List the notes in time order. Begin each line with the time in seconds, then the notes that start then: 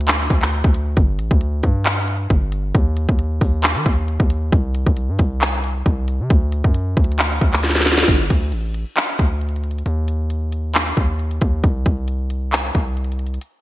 Already playing: D2
0.01 closed hi-hat
0.08 clap, closed hi-hat
0.30 D2, kick, closed hi-hat
0.42 clap
0.53 closed hi-hat
0.64 D2, kick
0.74 closed hi-hat
0.97 G1, kick, closed hi-hat
1.19 A1, closed hi-hat
1.31 D2, kick
1.41 closed hi-hat
1.63 G2, kick, closed hi-hat
1.85 clap, closed hi-hat
2.08 closed hi-hat
2.30 G1, kick, closed hi-hat
2.52 closed hi-hat
2.75 D#2, kick, closed hi-hat
2.97 closed hi-hat
3.09 D#2, kick
3.19 closed hi-hat
3.41 D#2, kick, open hi-hat
3.63 clap, closed hi-hat
3.76 D#3
3.86 D#2, kick, closed hi-hat
4.08 closed hi-hat
4.20 D#2, kick
4.30 closed hi-hat
4.52 C2, kick, closed hi-hat
4.75 closed hi-hat
4.86 C2, kick
4.97 closed hi-hat
5.09 G2
5.19 C2, kick, closed hi-hat
5.41 clap, closed hi-hat
5.64 closed hi-hat
5.86 C2, kick, closed hi-hat
6.08 closed hi-hat
6.20 C3
6.30 D2, kick, closed hi-hat
6.52 closed hi-hat
6.64 F#2, kick
6.74 closed hi-hat
6.97 D2, kick, closed hi-hat
7.04 closed hi-hat
7.12 closed hi-hat
7.19 clap, closed hi-hat
7.41 D2, kick, closed hi-hat
7.53 clap
7.64 snare, closed hi-hat
7.70 snare
7.75 snare
7.81 snare
7.86 snare, closed hi-hat
7.92 snare
7.98 snare
8.03 snare
8.08 G1, kick, closed hi-hat, crash
8.30 D2, kick, closed hi-hat
8.52 A1, closed hi-hat
8.74 closed hi-hat
8.97 clap, closed hi-hat
9.19 D2, kick, closed hi-hat
9.41 closed hi-hat
9.49 closed hi-hat
9.56 closed hi-hat
9.64 closed hi-hat
9.71 closed hi-hat
9.78 closed hi-hat
9.86 D#2, closed hi-hat
10.08 closed hi-hat
10.30 closed hi-hat
10.52 closed hi-hat
10.75 clap, closed hi-hat
10.97 D#2, kick
11.19 closed hi-hat
11.31 closed hi-hat
11.41 D#2, kick, closed hi-hat
11.64 C2, kick, closed hi-hat
11.86 C2, kick, closed hi-hat
12.08 closed hi-hat
12.30 closed hi-hat
12.52 clap, closed hi-hat
12.75 C2, kick, closed hi-hat
12.97 closed hi-hat
13.04 closed hi-hat
13.12 closed hi-hat
13.19 closed hi-hat
13.27 closed hi-hat
13.34 closed hi-hat
13.41 closed hi-hat